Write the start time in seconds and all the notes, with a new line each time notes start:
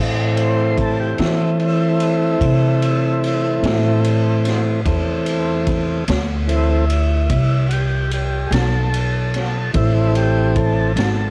Already playing: A2 E3 A3 C4
0.37 C5, ride
0.77 A4, kick, ride
1.00 G4
1.18 E3 E4, snare, ride
1.59 E4, ride
2.00 ride
2.41 C3, kick, ride
2.82 ride
3.24 ride
3.63 A2, snare, ride
4.05 ride
4.45 snare, ride
4.85 E2 E3 A3 C4, kick, ride
5.26 ride
5.67 kick, ride
6.08 D2, snare, ride
6.47 E3 A3 C4 E4, ride
6.90 ride
7.30 C2, kick, ride
7.69 F#4, ride
7.73 G4
8.11 G4, ride
8.47 B1 G#4
8.52 A4, snare, ride
8.94 ride
9.34 snare, ride
9.73 A1 E3 A3 C4 E4, kick, ride
10.15 G4, ride
10.56 A4, kick, ride
10.96 G#1, snare, ride